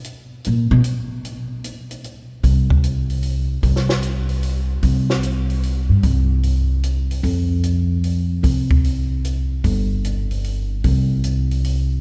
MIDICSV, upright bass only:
0, 0, Header, 1, 2, 480
1, 0, Start_track
1, 0, Tempo, 400267
1, 48, Time_signature, 3, 2, 24, 8
1, 14398, End_track
2, 0, Start_track
2, 0, Title_t, "Upright bass"
2, 0, Program_c, 0, 32
2, 561, Note_on_c, 0, 46, 70
2, 845, Note_off_c, 0, 46, 0
2, 853, Note_on_c, 0, 47, 103
2, 947, Note_off_c, 0, 47, 0
2, 2919, Note_on_c, 0, 36, 76
2, 4314, Note_off_c, 0, 36, 0
2, 4354, Note_on_c, 0, 36, 80
2, 5752, Note_off_c, 0, 36, 0
2, 5789, Note_on_c, 0, 36, 83
2, 7029, Note_off_c, 0, 36, 0
2, 7068, Note_on_c, 0, 43, 58
2, 7226, Note_off_c, 0, 43, 0
2, 7237, Note_on_c, 0, 36, 79
2, 8634, Note_off_c, 0, 36, 0
2, 8674, Note_on_c, 0, 41, 78
2, 10073, Note_off_c, 0, 41, 0
2, 10112, Note_on_c, 0, 36, 73
2, 11511, Note_off_c, 0, 36, 0
2, 11561, Note_on_c, 0, 31, 80
2, 12956, Note_off_c, 0, 31, 0
2, 13002, Note_on_c, 0, 36, 82
2, 14397, Note_off_c, 0, 36, 0
2, 14398, End_track
0, 0, End_of_file